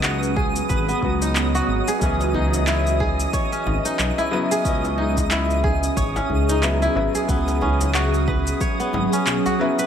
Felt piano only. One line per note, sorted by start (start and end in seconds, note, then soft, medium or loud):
0.00 0.99 C#3 medium
0.00 0.99 F#3 medium
0.00 1.00 B3 medium
0.00 1.01 C#4 medium
1.00 1.97 C#3 medium
1.00 1.98 F#3 medium
1.00 1.98 B3 medium
1.00 1.99 F#4 medium
1.99 4.28 C#3 medium
1.99 4.30 E3 medium
1.99 4.28 F#3 medium
1.99 4.29 B3 medium
4.31 4.61 C#3 medium
4.31 4.61 F#3 medium
4.31 4.62 B3 medium
4.31 4.62 E4 loud
4.63 6.58 C#3 medium
4.63 6.59 F#3 medium
4.63 6.60 B3 medium
4.67 6.61 D#5 medium
6.61 6.92 C#3 medium
6.61 6.92 F#3 medium
6.61 6.93 B3 medium
6.61 6.93 E4 medium
6.95 7.25 C#3 medium
6.95 7.25 F#3 medium
6.95 7.26 B3 medium
6.95 7.26 E4 medium
7.27 9.55 C#3 medium
7.27 9.56 F#3 medium
7.27 9.57 B3 medium
7.31 9.57 E4 medium
9.59 9.87 C#3 medium
9.59 9.87 F#3 medium
9.59 9.87 B3 medium
9.59 9.87 E4 loud